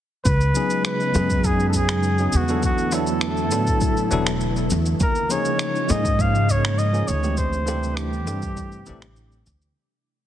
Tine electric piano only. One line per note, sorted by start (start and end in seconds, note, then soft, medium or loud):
0.54 1.11 F#3 medium
0.54 1.11 B3 medium
0.54 1.12 C#4 medium
0.54 1.12 D#4 medium
0.54 1.12 G#4 medium
1.12 2.15 F#3 medium
1.12 2.15 B3 medium
1.12 2.16 C#4 medium
1.12 2.16 D#4 medium
1.17 2.17 G#4 medium
2.19 2.32 F#3 medium
2.19 2.32 B3 medium
2.19 2.32 C#4 medium
2.19 2.32 D#4 medium
2.19 2.33 G#4 medium
2.48 2.89 F#3 medium
2.48 2.90 B3 medium
2.48 2.90 D4 medium
2.48 2.90 E4 medium
2.48 2.90 A4 medium
2.92 3.49 F#3 medium
2.92 3.49 B3 medium
2.92 3.49 D4 medium
2.92 3.50 E4 medium
2.92 3.50 A4 medium
3.52 4.08 F#3 medium
3.52 4.08 B3 medium
3.52 4.09 D4 medium
3.52 4.09 E4 medium
3.52 4.09 A4 medium
4.11 4.28 F#3 loud
4.11 4.28 B3 medium
4.11 4.29 D4 medium
4.11 4.29 E4 medium
4.11 4.29 A4 loud
5.29 5.86 F3 medium
5.29 5.86 A#3 medium
5.29 5.87 C#4 medium
5.29 5.87 D#4 medium
5.29 5.87 G#4 medium
5.88 6.90 F3 medium
5.88 6.91 A#3 medium
5.88 6.91 C#4 medium
5.88 6.92 D#4 medium
5.93 6.92 G#4 medium
6.93 7.09 F3 medium
6.93 7.09 A#3 medium
6.93 7.10 C#4 medium
6.93 7.10 D#4 medium
6.93 7.10 G#4 medium
7.22 7.64 E3 medium
7.22 7.64 A3 medium
7.22 7.64 C4 medium
7.22 7.65 D4 medium
7.22 7.65 G4 medium
7.66 8.23 E3 medium
7.66 8.23 A3 medium
7.66 8.24 C4 medium
7.66 8.24 D4 medium
7.66 8.24 G4 medium
8.26 8.83 E3 medium
8.26 8.83 A3 medium
8.26 8.83 C4 medium
8.26 8.84 D4 medium
8.26 8.84 G4 medium
8.86 9.04 E3 loud
8.86 9.04 A3 medium
8.86 9.04 C4 medium
8.86 9.04 D4 medium
8.86 9.05 G4 loud